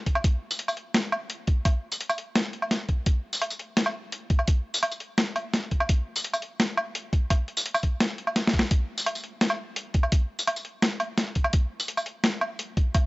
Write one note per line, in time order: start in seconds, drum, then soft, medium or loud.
0.06 kick medium
0.06 closed hi-hat soft
0.15 low woodblock medium
0.24 kick loud
0.24 closed hi-hat medium
0.51 tambourine medium
0.59 closed hi-hat medium
0.68 tambourine soft
0.68 low woodblock medium
0.77 closed hi-hat soft
0.94 snare loud
0.94 closed hi-hat medium
1.12 low woodblock medium
1.30 closed hi-hat medium
1.47 kick loud
1.47 closed hi-hat soft
1.65 kick loud
1.65 closed hi-hat medium
1.65 low woodblock medium
1.92 tambourine medium
2.01 closed hi-hat medium
2.10 tambourine soft
2.10 low woodblock medium
2.18 closed hi-hat soft
2.36 snare loud
2.36 closed hi-hat medium
2.53 closed hi-hat soft
2.62 low woodblock medium
2.71 snare medium
2.71 closed hi-hat medium
2.89 kick medium
2.89 closed hi-hat soft
3.06 kick loud
3.06 closed hi-hat medium
3.33 tambourine medium
3.42 closed hi-hat medium
3.42 low woodblock medium
3.50 tambourine soft
3.59 closed hi-hat soft
3.77 snare loud
3.77 closed hi-hat medium
3.86 low woodblock medium
4.12 closed hi-hat medium
4.30 kick loud
4.30 closed hi-hat soft
4.39 low woodblock soft
4.48 kick loud
4.48 closed hi-hat medium
4.74 tambourine medium
4.83 closed hi-hat medium
4.83 low woodblock medium
4.92 tambourine soft
5.00 closed hi-hat soft
5.18 snare loud
5.18 closed hi-hat medium
5.36 closed hi-hat soft
5.36 low woodblock medium
5.54 snare medium
5.54 closed hi-hat medium
5.71 kick medium
5.71 closed hi-hat soft
5.80 low woodblock medium
5.89 kick loud
5.89 closed hi-hat medium
6.16 tambourine medium
6.24 closed hi-hat medium
6.33 tambourine soft
6.33 low woodblock medium
6.42 closed hi-hat soft
6.60 snare loud
6.60 closed hi-hat medium
6.77 low woodblock medium
6.95 closed hi-hat medium
7.13 kick loud
7.13 closed hi-hat soft
7.30 kick loud
7.30 closed hi-hat medium
7.30 low woodblock medium
7.48 closed hi-hat soft
7.57 tambourine medium
7.66 closed hi-hat medium
7.74 tambourine soft
7.74 low woodblock medium
7.83 kick medium
7.83 closed hi-hat soft
8.00 snare loud
8.00 closed hi-hat medium
8.18 closed hi-hat soft
8.27 low woodblock medium
8.36 snare medium
8.36 closed hi-hat medium
8.47 snare medium
8.53 kick medium
8.53 closed hi-hat soft
8.59 snare medium
8.71 kick loud
8.71 closed hi-hat medium
8.98 tambourine medium
9.06 closed hi-hat medium
9.06 low woodblock medium
9.15 tambourine soft
9.24 closed hi-hat soft
9.41 snare loud
9.41 closed hi-hat medium
9.50 low woodblock medium
9.76 closed hi-hat medium
9.94 kick loud
9.94 closed hi-hat soft
10.03 low woodblock medium
10.12 kick loud
10.12 closed hi-hat medium
10.39 tambourine medium
10.47 closed hi-hat medium
10.47 low woodblock medium
10.56 tambourine soft
10.65 closed hi-hat soft
10.82 snare loud
10.82 closed hi-hat medium
11.00 closed hi-hat soft
11.00 low woodblock medium
11.18 snare medium
11.18 closed hi-hat medium
11.35 kick medium
11.35 closed hi-hat soft
11.44 low woodblock medium
11.53 kick loud
11.53 closed hi-hat medium
11.80 tambourine medium
11.88 closed hi-hat medium
11.97 tambourine soft
11.97 low woodblock medium
12.06 closed hi-hat soft
12.24 snare loud
12.24 closed hi-hat medium
12.41 low woodblock medium
12.59 closed hi-hat medium
12.77 kick loud
12.77 closed hi-hat soft
12.94 kick loud
12.94 closed hi-hat medium
12.94 low woodblock medium